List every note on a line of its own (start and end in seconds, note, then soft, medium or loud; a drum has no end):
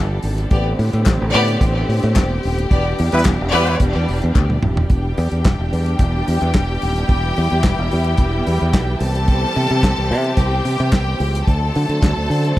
0.00 0.18 G1 loud
0.00 0.47 E3 medium
0.00 0.47 G3 medium
0.00 0.48 B3 medium
0.00 0.47 D4 medium
0.00 0.49 A4 medium
0.23 0.45 G#1 medium
0.23 open hi-hat medium
0.38 closed hi-hat soft
0.51 0.73 A1 medium
0.51 2.68 D3 medium
0.51 2.68 A3 medium
0.51 2.68 B3 medium
0.51 0.64 B3 medium
0.51 2.68 C4 medium
0.51 0.64 G4 medium
0.51 4.86 G4 medium
0.51 0.64 D5 medium
0.51 kick loud
0.51 closed hi-hat soft
0.79 0.90 A2 loud
0.79 open hi-hat medium
0.93 1.03 A2 loud
0.93 closed hi-hat soft
1.06 1.18 A1 loud
1.06 kick loud
1.06 snare loud
1.06 clap loud
1.06 closed hi-hat medium
1.22 1.31 A1 medium
1.34 1.56 A2 loud
1.34 1.57 B3 loud
1.34 1.57 G4 loud
1.34 1.57 D5 loud
1.34 open hi-hat medium
1.48 closed hi-hat medium
1.61 1.83 A1 loud
1.61 kick loud
1.61 closed hi-hat medium
1.89 2.00 A2 medium
1.89 open hi-hat medium
2.03 2.13 A2 loud
2.03 closed hi-hat soft
2.16 2.38 E1 medium
2.16 kick loud
2.16 snare loud
2.16 clap medium
2.16 closed hi-hat medium
2.43 2.66 D#1 medium
2.43 open hi-hat medium
2.58 closed hi-hat medium
2.70 2.92 E1 medium
2.70 4.88 E3 medium
2.70 4.88 G3 medium
2.70 2.83 B3 medium
2.70 4.89 B3 medium
2.70 4.89 D4 medium
2.70 2.82 G4 medium
2.70 2.83 D5 medium
2.70 kick loud
2.70 closed hi-hat soft
2.99 3.10 E2 loud
2.99 open hi-hat medium
3.12 3.23 E2 loud
3.12 3.21 G3 medium
3.12 3.21 E4 medium
3.12 3.21 B4 medium
3.12 closed hi-hat medium
3.25 3.37 E1 loud
3.25 kick loud
3.25 snare loud
3.25 clap loud
3.25 closed hi-hat medium
3.41 3.51 E1 medium
3.52 3.75 E2 loud
3.52 3.76 G3 medium
3.52 3.75 B3 loud
3.52 3.76 E4 medium
3.52 3.75 G4 loud
3.52 3.76 B4 loud
3.52 3.75 D5 loud
3.52 open hi-hat medium
3.67 closed hi-hat medium
3.80 3.92 E1 medium
3.80 kick loud
3.80 closed hi-hat medium
3.96 4.05 E2 loud
4.08 4.20 E1 medium
4.08 open hi-hat medium
4.22 4.33 E2 loud
4.22 closed hi-hat soft
4.35 4.57 D2 medium
4.35 kick loud
4.35 clap medium
4.35 high tom medium
4.50 mid tom medium
4.63 4.84 D#1 medium
4.63 mid tom loud
4.77 floor tom medium
4.90 5.12 E1 medium
4.90 11.45 E3 medium
4.90 11.45 G3 medium
4.90 11.45 B3 medium
4.90 7.08 D4 medium
4.90 8.97 G4 medium
4.90 8.99 G4 medium
4.90 8.97 G5 medium
4.90 kick medium
4.90 closed hi-hat soft
5.18 5.29 E2 loud
5.18 open hi-hat medium
5.31 5.42 E2 medium
5.31 closed hi-hat medium
5.44 5.57 E1 medium
5.44 kick loud
5.44 snare loud
5.44 clap medium
5.44 closed hi-hat medium
5.59 5.69 E1 medium
5.73 5.94 E2 medium
5.73 open hi-hat medium
5.86 closed hi-hat medium
5.99 6.21 E1 loud
5.99 kick loud
5.99 closed hi-hat medium
6.28 6.39 E2 medium
6.28 open hi-hat medium
6.41 6.52 E2 medium
6.41 closed hi-hat soft
6.54 6.76 E1 medium
6.54 kick loud
6.54 snare loud
6.54 clap medium
6.54 closed hi-hat medium
6.82 7.04 D#1 medium
6.82 open hi-hat medium
6.96 closed hi-hat soft
7.09 7.31 E1 medium
7.09 8.99 E4 medium
7.09 kick loud
7.09 closed hi-hat soft
7.36 7.49 E2 loud
7.36 open hi-hat medium
7.50 7.62 E2 medium
7.50 closed hi-hat medium
7.63 7.76 E1 medium
7.63 kick loud
7.63 snare loud
7.63 clap medium
7.63 closed hi-hat medium
7.79 7.89 E1 medium
7.91 8.14 E2 loud
7.91 open hi-hat medium
8.04 closed hi-hat soft
8.17 8.40 E1 medium
8.17 kick loud
8.17 closed hi-hat medium
8.47 8.58 E2 medium
8.47 open hi-hat medium
8.61 8.71 E2 medium
8.61 closed hi-hat soft
8.73 8.95 B1 medium
8.73 kick loud
8.73 snare medium
8.73 clap medium
8.73 closed hi-hat medium
8.99 9.44 C2 loud
8.99 11.45 C4 medium
8.99 11.45 G4 medium
8.99 10.35 A4 medium
8.99 10.34 A5 loud
8.99 open hi-hat medium
9.15 closed hi-hat soft
9.28 kick medium
9.28 closed hi-hat soft
9.55 9.68 C3 loud
9.55 open hi-hat medium
9.70 9.81 C3 medium
9.70 closed hi-hat medium
9.83 9.95 C2 medium
9.83 kick loud
9.83 snare loud
9.83 clap loud
9.83 closed hi-hat medium
9.98 10.12 C2 medium
10.11 10.32 C3 loud
10.11 open hi-hat medium
10.24 closed hi-hat medium
10.37 10.60 C2 loud
10.37 11.46 G4 medium
10.37 11.45 G5 medium
10.37 kick loud
10.37 closed hi-hat medium
10.65 10.77 C3 medium
10.65 open hi-hat medium
10.79 10.90 C3 medium
10.79 closed hi-hat soft
10.92 11.15 C2 medium
10.92 kick loud
10.92 snare loud
10.92 clap medium
10.92 closed hi-hat medium
11.20 11.42 C#2 medium
11.20 open hi-hat medium
11.35 closed hi-hat medium
11.46 11.69 D2 medium
11.46 12.59 D3 medium
11.46 12.59 F#3 medium
11.46 12.59 A3 medium
11.46 12.59 C4 medium
11.46 12.59 A4 medium
11.46 12.59 A5 medium
11.46 kick loud
11.46 closed hi-hat soft
11.75 11.87 D3 loud
11.75 open hi-hat medium
11.89 11.99 D3 medium
11.89 closed hi-hat medium
12.02 12.14 D2 loud
12.02 kick loud
12.02 snare loud
12.02 clap loud
12.02 closed hi-hat medium
12.17 12.27 D2 medium
12.30 12.51 D3 medium
12.30 open hi-hat medium
12.45 closed hi-hat soft